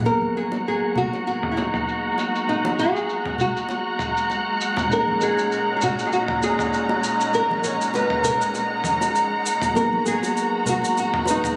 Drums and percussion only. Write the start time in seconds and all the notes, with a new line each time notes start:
0.06 high bongo, shaker
0.21 high conga
0.37 shaker
0.52 high bongo, shaker
0.68 shaker
0.96 low conga, shaker
1.13 high bongo, shaker
1.27 shaker
1.43 mid tom
1.57 high bongo, shaker
1.74 mid tom, shaker
1.88 shaker
2.18 high bongo, shaker
2.35 shaker
2.49 shaker
2.65 high bongo, high conga
2.79 shaker
2.96 shaker
3.09 shaker
3.26 mid tom, high bongo
3.38 low conga, shaker
3.57 shaker
3.69 high bongo, shaker
3.99 mid tom, shaker
4.17 shaker
4.30 high bongo, shaker
4.61 shaker
4.77 mid tom, high bongo, shaker
4.91 shaker
5.08 high conga
5.21 shaker
5.37 high bongo, shaker
5.52 shaker
5.81 high bongo, low conga, shaker
5.99 shaker
6.12 shaker
6.28 mid tom
6.42 high bongo, shaker
6.59 mid tom, shaker
6.73 shaker
6.89 high bongo
7.03 shaker
7.21 shaker
7.33 shaker
7.51 high bongo, high conga
7.64 shaker
7.81 shaker
7.94 high bongo, shaker
8.10 mid tom
8.23 low conga, shaker
8.41 shaker
8.54 high bongo, shaker
8.84 mid tom, high conga, shaker
9.01 high bongo, shaker
9.15 shaker
9.46 shaker
9.62 mid tom, high bongo, shaker
9.75 high bongo, shaker
9.93 high conga
10.06 shaker
10.23 high bongo, shaker
10.37 shaker
10.66 low conga, shaker
10.82 high bongo, shaker
10.97 shaker
11.14 mid tom
11.25 high bongo, shaker
11.44 mid tom, shaker